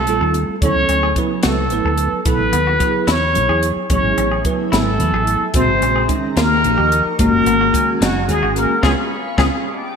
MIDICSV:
0, 0, Header, 1, 9, 480
1, 0, Start_track
1, 0, Tempo, 547945
1, 541, Time_signature, 6, 3, 24, 8
1, 8725, End_track
2, 0, Start_track
2, 0, Title_t, "Analog synth pad"
2, 0, Program_c, 0, 89
2, 3429, Note_on_c, 0, 76, 74
2, 3432, Note_on_c, 0, 57, 81
2, 3433, Note_on_c, 0, 80, 72
2, 4850, Note_off_c, 0, 57, 0
2, 4850, Note_off_c, 0, 80, 0
2, 4850, Note_on_c, 0, 68, 77
2, 4857, Note_on_c, 0, 82, 77
2, 5561, Note_off_c, 0, 76, 0
2, 5563, Note_on_c, 0, 85, 82
2, 5564, Note_on_c, 0, 67, 72
2, 5566, Note_off_c, 0, 68, 0
2, 5575, Note_on_c, 0, 75, 72
2, 6283, Note_off_c, 0, 67, 0
2, 6283, Note_off_c, 0, 85, 0
2, 6283, Note_on_c, 0, 68, 80
2, 6287, Note_on_c, 0, 80, 91
2, 6288, Note_on_c, 0, 78, 77
2, 6289, Note_off_c, 0, 75, 0
2, 7709, Note_off_c, 0, 82, 0
2, 7718, Note_off_c, 0, 80, 0
2, 7719, Note_off_c, 0, 78, 0
2, 7747, Note_on_c, 0, 83, 72
2, 7747, Note_on_c, 0, 85, 87
2, 7750, Note_on_c, 0, 77, 70
2, 8430, Note_off_c, 0, 68, 0
2, 8456, Note_off_c, 0, 83, 0
2, 8456, Note_off_c, 0, 85, 0
2, 8458, Note_off_c, 0, 77, 0
2, 8459, Note_on_c, 0, 86, 85
2, 8460, Note_on_c, 0, 81, 69
2, 8462, Note_on_c, 0, 75, 70
2, 8463, Note_on_c, 0, 67, 78
2, 8725, Note_off_c, 0, 67, 0
2, 8725, Note_off_c, 0, 75, 0
2, 8725, Note_off_c, 0, 81, 0
2, 8725, Note_off_c, 0, 86, 0
2, 8725, End_track
3, 0, Start_track
3, 0, Title_t, "Muted trumpet"
3, 0, Program_c, 1, 59
3, 0, Note_on_c, 1, 69, 92
3, 362, Note_off_c, 1, 69, 0
3, 546, Note_on_c, 1, 73, 102
3, 990, Note_off_c, 1, 73, 0
3, 1274, Note_on_c, 1, 69, 80
3, 1978, Note_on_c, 1, 71, 96
3, 1991, Note_off_c, 1, 69, 0
3, 2708, Note_on_c, 1, 73, 98
3, 2721, Note_off_c, 1, 71, 0
3, 3243, Note_off_c, 1, 73, 0
3, 3433, Note_on_c, 1, 73, 87
3, 3872, Note_off_c, 1, 73, 0
3, 4140, Note_on_c, 1, 69, 85
3, 4862, Note_on_c, 1, 72, 99
3, 4875, Note_off_c, 1, 69, 0
3, 5340, Note_off_c, 1, 72, 0
3, 5583, Note_on_c, 1, 70, 112
3, 6265, Note_off_c, 1, 70, 0
3, 6302, Note_on_c, 1, 70, 111
3, 7027, Note_on_c, 1, 66, 92
3, 7041, Note_off_c, 1, 70, 0
3, 7265, Note_on_c, 1, 68, 90
3, 7279, Note_off_c, 1, 66, 0
3, 7504, Note_on_c, 1, 70, 91
3, 7517, Note_off_c, 1, 68, 0
3, 7741, Note_off_c, 1, 70, 0
3, 7749, Note_on_c, 1, 68, 92
3, 7803, Note_off_c, 1, 68, 0
3, 8230, Note_on_c, 1, 68, 92
3, 8284, Note_off_c, 1, 68, 0
3, 8725, End_track
4, 0, Start_track
4, 0, Title_t, "Clean electric guitar"
4, 0, Program_c, 2, 27
4, 184, Note_on_c, 2, 69, 69
4, 320, Note_off_c, 2, 69, 0
4, 781, Note_on_c, 2, 61, 74
4, 849, Note_off_c, 2, 61, 0
4, 903, Note_on_c, 2, 68, 71
4, 1039, Note_off_c, 2, 68, 0
4, 1254, Note_on_c, 2, 66, 84
4, 1393, Note_off_c, 2, 66, 0
4, 1626, Note_on_c, 2, 69, 68
4, 1761, Note_off_c, 2, 69, 0
4, 2215, Note_on_c, 2, 59, 72
4, 2285, Note_off_c, 2, 59, 0
4, 2340, Note_on_c, 2, 66, 68
4, 2477, Note_off_c, 2, 66, 0
4, 2693, Note_on_c, 2, 64, 76
4, 2831, Note_off_c, 2, 64, 0
4, 3059, Note_on_c, 2, 68, 66
4, 3196, Note_off_c, 2, 68, 0
4, 3660, Note_on_c, 2, 61, 70
4, 3728, Note_off_c, 2, 61, 0
4, 3780, Note_on_c, 2, 68, 65
4, 3916, Note_off_c, 2, 68, 0
4, 4135, Note_on_c, 2, 64, 81
4, 4272, Note_off_c, 2, 64, 0
4, 4501, Note_on_c, 2, 68, 68
4, 4637, Note_off_c, 2, 68, 0
4, 5105, Note_on_c, 2, 61, 71
4, 5171, Note_off_c, 2, 61, 0
4, 5218, Note_on_c, 2, 68, 67
4, 5355, Note_off_c, 2, 68, 0
4, 5583, Note_on_c, 2, 65, 78
4, 5718, Note_off_c, 2, 65, 0
4, 5936, Note_on_c, 2, 67, 70
4, 6073, Note_off_c, 2, 67, 0
4, 6544, Note_on_c, 2, 59, 75
4, 6610, Note_off_c, 2, 59, 0
4, 6666, Note_on_c, 2, 66, 68
4, 6800, Note_off_c, 2, 66, 0
4, 7024, Note_on_c, 2, 63, 84
4, 7159, Note_off_c, 2, 63, 0
4, 7382, Note_on_c, 2, 66, 71
4, 7518, Note_off_c, 2, 66, 0
4, 7733, Note_on_c, 2, 61, 83
4, 7733, Note_on_c, 2, 65, 87
4, 7738, Note_on_c, 2, 68, 87
4, 7811, Note_off_c, 2, 65, 0
4, 7813, Note_off_c, 2, 61, 0
4, 7813, Note_off_c, 2, 68, 0
4, 8218, Note_on_c, 2, 61, 95
4, 8218, Note_on_c, 2, 65, 91
4, 8222, Note_on_c, 2, 68, 97
4, 8295, Note_off_c, 2, 65, 0
4, 8295, Note_off_c, 2, 68, 0
4, 8296, Note_off_c, 2, 61, 0
4, 8725, End_track
5, 0, Start_track
5, 0, Title_t, "Tine electric piano"
5, 0, Program_c, 3, 4
5, 75, Note_on_c, 3, 55, 73
5, 75, Note_on_c, 3, 65, 68
5, 76, Note_on_c, 3, 60, 63
5, 78, Note_on_c, 3, 69, 83
5, 476, Note_off_c, 3, 55, 0
5, 476, Note_off_c, 3, 60, 0
5, 476, Note_off_c, 3, 65, 0
5, 477, Note_off_c, 3, 69, 0
5, 551, Note_on_c, 3, 54, 74
5, 552, Note_on_c, 3, 59, 63
5, 553, Note_on_c, 3, 69, 84
5, 555, Note_on_c, 3, 64, 67
5, 954, Note_off_c, 3, 54, 0
5, 954, Note_off_c, 3, 59, 0
5, 955, Note_off_c, 3, 69, 0
5, 956, Note_off_c, 3, 64, 0
5, 1030, Note_on_c, 3, 54, 75
5, 1032, Note_on_c, 3, 71, 86
5, 1033, Note_on_c, 3, 59, 74
5, 1033, Note_on_c, 3, 64, 73
5, 1433, Note_off_c, 3, 54, 0
5, 1434, Note_off_c, 3, 71, 0
5, 1435, Note_off_c, 3, 59, 0
5, 1435, Note_off_c, 3, 64, 0
5, 1507, Note_on_c, 3, 59, 66
5, 1509, Note_on_c, 3, 71, 80
5, 1511, Note_on_c, 3, 54, 71
5, 1512, Note_on_c, 3, 64, 69
5, 1911, Note_off_c, 3, 59, 0
5, 1912, Note_off_c, 3, 71, 0
5, 1913, Note_off_c, 3, 54, 0
5, 1914, Note_off_c, 3, 64, 0
5, 1975, Note_on_c, 3, 64, 71
5, 1976, Note_on_c, 3, 59, 68
5, 1980, Note_on_c, 3, 54, 75
5, 1987, Note_on_c, 3, 69, 80
5, 2385, Note_off_c, 3, 64, 0
5, 2386, Note_off_c, 3, 59, 0
5, 2388, Note_off_c, 3, 54, 0
5, 2391, Note_off_c, 3, 69, 0
5, 2447, Note_on_c, 3, 68, 82
5, 2449, Note_on_c, 3, 64, 65
5, 2450, Note_on_c, 3, 54, 78
5, 2451, Note_on_c, 3, 59, 67
5, 2693, Note_off_c, 3, 68, 0
5, 2694, Note_off_c, 3, 54, 0
5, 2694, Note_off_c, 3, 64, 0
5, 2695, Note_off_c, 3, 59, 0
5, 2927, Note_on_c, 3, 59, 67
5, 2927, Note_on_c, 3, 68, 78
5, 2928, Note_on_c, 3, 54, 68
5, 2929, Note_on_c, 3, 64, 65
5, 3341, Note_off_c, 3, 54, 0
5, 3341, Note_off_c, 3, 59, 0
5, 3341, Note_off_c, 3, 64, 0
5, 3341, Note_off_c, 3, 68, 0
5, 3410, Note_on_c, 3, 54, 70
5, 3416, Note_on_c, 3, 64, 66
5, 3417, Note_on_c, 3, 68, 78
5, 3418, Note_on_c, 3, 59, 63
5, 3822, Note_off_c, 3, 54, 0
5, 3825, Note_off_c, 3, 64, 0
5, 3826, Note_off_c, 3, 59, 0
5, 3826, Note_off_c, 3, 68, 0
5, 3893, Note_on_c, 3, 64, 68
5, 3895, Note_on_c, 3, 54, 78
5, 3899, Note_on_c, 3, 59, 70
5, 3902, Note_on_c, 3, 71, 78
5, 4304, Note_off_c, 3, 54, 0
5, 4304, Note_off_c, 3, 64, 0
5, 4307, Note_off_c, 3, 59, 0
5, 4308, Note_off_c, 3, 71, 0
5, 4378, Note_on_c, 3, 54, 71
5, 4384, Note_on_c, 3, 64, 64
5, 4386, Note_on_c, 3, 69, 78
5, 4388, Note_on_c, 3, 59, 70
5, 4786, Note_off_c, 3, 54, 0
5, 4789, Note_off_c, 3, 64, 0
5, 4790, Note_off_c, 3, 69, 0
5, 4791, Note_off_c, 3, 59, 0
5, 4850, Note_on_c, 3, 51, 76
5, 4850, Note_on_c, 3, 66, 87
5, 4853, Note_on_c, 3, 49, 68
5, 4853, Note_on_c, 3, 56, 70
5, 5262, Note_off_c, 3, 51, 0
5, 5262, Note_off_c, 3, 66, 0
5, 5263, Note_off_c, 3, 49, 0
5, 5263, Note_off_c, 3, 56, 0
5, 5331, Note_on_c, 3, 56, 74
5, 5332, Note_on_c, 3, 61, 71
5, 5332, Note_on_c, 3, 63, 87
5, 5333, Note_on_c, 3, 51, 77
5, 5574, Note_off_c, 3, 56, 0
5, 5574, Note_off_c, 3, 61, 0
5, 5575, Note_off_c, 3, 51, 0
5, 5575, Note_off_c, 3, 63, 0
5, 5820, Note_on_c, 3, 67, 82
5, 5822, Note_on_c, 3, 63, 72
5, 5826, Note_on_c, 3, 53, 80
5, 5827, Note_on_c, 3, 58, 66
5, 6226, Note_off_c, 3, 67, 0
5, 6228, Note_off_c, 3, 63, 0
5, 6230, Note_off_c, 3, 53, 0
5, 6230, Note_off_c, 3, 58, 0
5, 6303, Note_on_c, 3, 51, 76
5, 6304, Note_on_c, 3, 56, 72
5, 6305, Note_on_c, 3, 61, 73
5, 6306, Note_on_c, 3, 66, 86
5, 6708, Note_off_c, 3, 51, 0
5, 6709, Note_off_c, 3, 56, 0
5, 6709, Note_off_c, 3, 61, 0
5, 6710, Note_off_c, 3, 66, 0
5, 6773, Note_on_c, 3, 51, 77
5, 6775, Note_on_c, 3, 56, 69
5, 6775, Note_on_c, 3, 61, 68
5, 6776, Note_on_c, 3, 66, 87
5, 7183, Note_off_c, 3, 51, 0
5, 7185, Note_off_c, 3, 56, 0
5, 7185, Note_off_c, 3, 61, 0
5, 7185, Note_off_c, 3, 66, 0
5, 7254, Note_on_c, 3, 51, 75
5, 7258, Note_on_c, 3, 66, 83
5, 7259, Note_on_c, 3, 61, 73
5, 7260, Note_on_c, 3, 56, 68
5, 7664, Note_off_c, 3, 51, 0
5, 7666, Note_off_c, 3, 66, 0
5, 7667, Note_off_c, 3, 56, 0
5, 7667, Note_off_c, 3, 61, 0
5, 7746, Note_on_c, 3, 61, 91
5, 7748, Note_on_c, 3, 59, 89
5, 7748, Note_on_c, 3, 65, 98
5, 7820, Note_off_c, 3, 61, 0
5, 7821, Note_off_c, 3, 59, 0
5, 7821, Note_off_c, 3, 65, 0
5, 8224, Note_on_c, 3, 61, 86
5, 8227, Note_on_c, 3, 59, 91
5, 8227, Note_on_c, 3, 65, 86
5, 8299, Note_off_c, 3, 61, 0
5, 8300, Note_off_c, 3, 59, 0
5, 8300, Note_off_c, 3, 65, 0
5, 8725, End_track
6, 0, Start_track
6, 0, Title_t, "Hollow-body jazz guitar"
6, 0, Program_c, 4, 26
6, 0, Note_on_c, 4, 57, 71
6, 367, Note_off_c, 4, 57, 0
6, 566, Note_on_c, 4, 61, 80
6, 1001, Note_off_c, 4, 61, 0
6, 1271, Note_on_c, 4, 57, 64
6, 1975, Note_off_c, 4, 57, 0
6, 1975, Note_on_c, 4, 59, 76
6, 2690, Note_off_c, 4, 59, 0
6, 2690, Note_on_c, 4, 61, 80
6, 3234, Note_off_c, 4, 61, 0
6, 3415, Note_on_c, 4, 61, 70
6, 3863, Note_off_c, 4, 61, 0
6, 4147, Note_on_c, 4, 57, 61
6, 4827, Note_off_c, 4, 57, 0
6, 4872, Note_on_c, 4, 60, 91
6, 5344, Note_off_c, 4, 60, 0
6, 5591, Note_on_c, 4, 58, 79
6, 6269, Note_off_c, 4, 58, 0
6, 6298, Note_on_c, 4, 58, 90
6, 6983, Note_off_c, 4, 58, 0
6, 7036, Note_on_c, 4, 54, 65
6, 7275, Note_off_c, 4, 54, 0
6, 7275, Note_on_c, 4, 56, 77
6, 7516, Note_off_c, 4, 56, 0
6, 7516, Note_on_c, 4, 58, 77
6, 7747, Note_off_c, 4, 58, 0
6, 7757, Note_on_c, 4, 61, 89
6, 7762, Note_on_c, 4, 59, 77
6, 7763, Note_on_c, 4, 56, 94
6, 7827, Note_off_c, 4, 59, 0
6, 7827, Note_off_c, 4, 61, 0
6, 7830, Note_off_c, 4, 56, 0
6, 8222, Note_on_c, 4, 56, 87
6, 8233, Note_on_c, 4, 61, 84
6, 8238, Note_on_c, 4, 59, 74
6, 8298, Note_off_c, 4, 56, 0
6, 8304, Note_off_c, 4, 61, 0
6, 8305, Note_off_c, 4, 59, 0
6, 8725, End_track
7, 0, Start_track
7, 0, Title_t, "Fretless electric bass"
7, 0, Program_c, 5, 35
7, 60, Note_on_c, 5, 34, 82
7, 165, Note_off_c, 5, 34, 0
7, 182, Note_on_c, 5, 39, 88
7, 389, Note_off_c, 5, 39, 0
7, 541, Note_on_c, 5, 38, 103
7, 645, Note_off_c, 5, 38, 0
7, 655, Note_on_c, 5, 37, 77
7, 761, Note_off_c, 5, 37, 0
7, 773, Note_on_c, 5, 38, 84
7, 984, Note_off_c, 5, 38, 0
7, 1261, Note_on_c, 5, 37, 89
7, 1490, Note_off_c, 5, 37, 0
7, 1490, Note_on_c, 5, 33, 83
7, 1598, Note_off_c, 5, 33, 0
7, 1616, Note_on_c, 5, 38, 90
7, 1825, Note_off_c, 5, 38, 0
7, 1972, Note_on_c, 5, 35, 97
7, 2079, Note_off_c, 5, 35, 0
7, 2092, Note_on_c, 5, 33, 77
7, 2199, Note_off_c, 5, 33, 0
7, 2211, Note_on_c, 5, 39, 82
7, 2422, Note_off_c, 5, 39, 0
7, 2690, Note_on_c, 5, 40, 85
7, 2943, Note_on_c, 5, 35, 84
7, 2956, Note_off_c, 5, 40, 0
7, 3045, Note_off_c, 5, 35, 0
7, 3051, Note_on_c, 5, 40, 82
7, 3262, Note_off_c, 5, 40, 0
7, 3412, Note_on_c, 5, 33, 97
7, 3519, Note_off_c, 5, 33, 0
7, 3530, Note_on_c, 5, 32, 75
7, 3637, Note_off_c, 5, 32, 0
7, 3653, Note_on_c, 5, 33, 78
7, 3862, Note_off_c, 5, 33, 0
7, 4136, Note_on_c, 5, 32, 90
7, 4370, Note_on_c, 5, 40, 82
7, 4383, Note_off_c, 5, 32, 0
7, 4477, Note_off_c, 5, 40, 0
7, 4484, Note_on_c, 5, 33, 86
7, 4697, Note_off_c, 5, 33, 0
7, 4851, Note_on_c, 5, 34, 102
7, 4957, Note_off_c, 5, 34, 0
7, 4964, Note_on_c, 5, 32, 79
7, 5073, Note_off_c, 5, 32, 0
7, 5088, Note_on_c, 5, 34, 78
7, 5299, Note_off_c, 5, 34, 0
7, 5572, Note_on_c, 5, 39, 90
7, 5815, Note_on_c, 5, 34, 88
7, 5828, Note_off_c, 5, 39, 0
7, 5920, Note_off_c, 5, 34, 0
7, 5942, Note_on_c, 5, 39, 90
7, 6147, Note_off_c, 5, 39, 0
7, 6292, Note_on_c, 5, 32, 98
7, 6398, Note_off_c, 5, 32, 0
7, 6416, Note_on_c, 5, 30, 76
7, 6520, Note_off_c, 5, 30, 0
7, 6529, Note_on_c, 5, 32, 83
7, 6740, Note_off_c, 5, 32, 0
7, 7013, Note_on_c, 5, 30, 97
7, 7259, Note_on_c, 5, 39, 80
7, 7272, Note_off_c, 5, 30, 0
7, 7362, Note_off_c, 5, 39, 0
7, 7375, Note_on_c, 5, 32, 87
7, 7584, Note_off_c, 5, 32, 0
7, 7737, Note_on_c, 5, 37, 87
7, 7827, Note_off_c, 5, 37, 0
7, 8218, Note_on_c, 5, 37, 91
7, 8308, Note_off_c, 5, 37, 0
7, 8725, End_track
8, 0, Start_track
8, 0, Title_t, "Muted fretless electric bass strokes"
8, 3291, Note_on_c, 9, 29, 35
8, 3379, Note_off_c, 9, 29, 0
8, 8725, End_track
9, 0, Start_track
9, 0, Title_t, "Drums"
9, 61, Note_on_c, 9, 42, 58
9, 148, Note_off_c, 9, 42, 0
9, 299, Note_on_c, 9, 42, 55
9, 387, Note_off_c, 9, 42, 0
9, 542, Note_on_c, 9, 36, 100
9, 543, Note_on_c, 9, 42, 74
9, 630, Note_off_c, 9, 36, 0
9, 631, Note_off_c, 9, 42, 0
9, 778, Note_on_c, 9, 42, 57
9, 865, Note_off_c, 9, 42, 0
9, 1017, Note_on_c, 9, 36, 71
9, 1017, Note_on_c, 9, 42, 53
9, 1105, Note_off_c, 9, 36, 0
9, 1105, Note_off_c, 9, 42, 0
9, 1250, Note_on_c, 9, 42, 77
9, 1256, Note_on_c, 9, 38, 98
9, 1337, Note_off_c, 9, 42, 0
9, 1344, Note_off_c, 9, 38, 0
9, 1490, Note_on_c, 9, 42, 59
9, 1578, Note_off_c, 9, 42, 0
9, 1730, Note_on_c, 9, 42, 63
9, 1818, Note_off_c, 9, 42, 0
9, 1975, Note_on_c, 9, 42, 78
9, 1976, Note_on_c, 9, 36, 97
9, 2062, Note_off_c, 9, 42, 0
9, 2064, Note_off_c, 9, 36, 0
9, 2215, Note_on_c, 9, 42, 67
9, 2303, Note_off_c, 9, 42, 0
9, 2455, Note_on_c, 9, 42, 61
9, 2456, Note_on_c, 9, 36, 73
9, 2542, Note_off_c, 9, 42, 0
9, 2543, Note_off_c, 9, 36, 0
9, 2696, Note_on_c, 9, 42, 75
9, 2702, Note_on_c, 9, 38, 97
9, 2784, Note_off_c, 9, 42, 0
9, 2790, Note_off_c, 9, 38, 0
9, 2937, Note_on_c, 9, 42, 61
9, 3024, Note_off_c, 9, 42, 0
9, 3177, Note_on_c, 9, 42, 57
9, 3264, Note_off_c, 9, 42, 0
9, 3414, Note_on_c, 9, 42, 70
9, 3416, Note_on_c, 9, 36, 99
9, 3502, Note_off_c, 9, 42, 0
9, 3504, Note_off_c, 9, 36, 0
9, 3659, Note_on_c, 9, 42, 56
9, 3747, Note_off_c, 9, 42, 0
9, 3895, Note_on_c, 9, 42, 52
9, 3897, Note_on_c, 9, 36, 71
9, 3983, Note_off_c, 9, 42, 0
9, 3985, Note_off_c, 9, 36, 0
9, 4142, Note_on_c, 9, 42, 74
9, 4148, Note_on_c, 9, 38, 91
9, 4230, Note_off_c, 9, 42, 0
9, 4236, Note_off_c, 9, 38, 0
9, 4379, Note_on_c, 9, 42, 56
9, 4466, Note_off_c, 9, 42, 0
9, 4619, Note_on_c, 9, 42, 52
9, 4706, Note_off_c, 9, 42, 0
9, 4850, Note_on_c, 9, 42, 73
9, 4855, Note_on_c, 9, 36, 103
9, 4938, Note_off_c, 9, 42, 0
9, 4942, Note_off_c, 9, 36, 0
9, 5098, Note_on_c, 9, 42, 59
9, 5186, Note_off_c, 9, 42, 0
9, 5335, Note_on_c, 9, 42, 60
9, 5336, Note_on_c, 9, 36, 75
9, 5423, Note_off_c, 9, 36, 0
9, 5423, Note_off_c, 9, 42, 0
9, 5577, Note_on_c, 9, 42, 71
9, 5583, Note_on_c, 9, 38, 102
9, 5664, Note_off_c, 9, 42, 0
9, 5670, Note_off_c, 9, 38, 0
9, 5820, Note_on_c, 9, 42, 61
9, 5907, Note_off_c, 9, 42, 0
9, 6062, Note_on_c, 9, 42, 61
9, 6150, Note_off_c, 9, 42, 0
9, 6298, Note_on_c, 9, 42, 81
9, 6299, Note_on_c, 9, 36, 101
9, 6386, Note_off_c, 9, 42, 0
9, 6387, Note_off_c, 9, 36, 0
9, 6538, Note_on_c, 9, 42, 64
9, 6625, Note_off_c, 9, 42, 0
9, 6781, Note_on_c, 9, 36, 73
9, 6785, Note_on_c, 9, 42, 62
9, 6868, Note_off_c, 9, 36, 0
9, 6873, Note_off_c, 9, 42, 0
9, 7024, Note_on_c, 9, 42, 74
9, 7030, Note_on_c, 9, 38, 104
9, 7112, Note_off_c, 9, 42, 0
9, 7118, Note_off_c, 9, 38, 0
9, 7260, Note_on_c, 9, 42, 59
9, 7348, Note_off_c, 9, 42, 0
9, 7500, Note_on_c, 9, 42, 58
9, 7587, Note_off_c, 9, 42, 0
9, 7737, Note_on_c, 9, 36, 88
9, 7738, Note_on_c, 9, 38, 80
9, 7825, Note_off_c, 9, 36, 0
9, 7825, Note_off_c, 9, 38, 0
9, 8217, Note_on_c, 9, 36, 87
9, 8220, Note_on_c, 9, 38, 84
9, 8304, Note_off_c, 9, 36, 0
9, 8308, Note_off_c, 9, 38, 0
9, 8725, End_track
0, 0, End_of_file